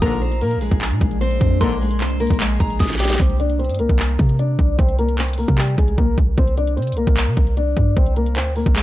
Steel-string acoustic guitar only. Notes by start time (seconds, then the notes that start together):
0.02 A#3 A#4
0.22 C4 C5
0.42 A#3 A#4
0.62 G#3 G#4
1.21 C4 C5
1.61 A#3 A#4
1.81 G#3 G#4
2.01 C4 C5
2.20 A#3 A#4
2.40 G#3 G#4
2.99 G3 G4
3.20 C4 C5
3.40 D4 D5
3.59 C4 C5
3.80 A#3 A#4
4.39 D4 D5
4.78 C4 C5
4.99 A#3 A#4
5.19 C4 C5
5.39 A#3 A#4
5.58 G3 G4
5.78 G#3 G#4
5.98 A#3 A#4
6.38 C4 C5
6.58 D4 D5
6.77 C4 C5
6.97 A#3 A#4
7.57 D4 D5
7.97 C4 C5
8.17 A#3 A#4
8.36 C4 C5
8.56 A#3 A#4
8.76 G#3 G#4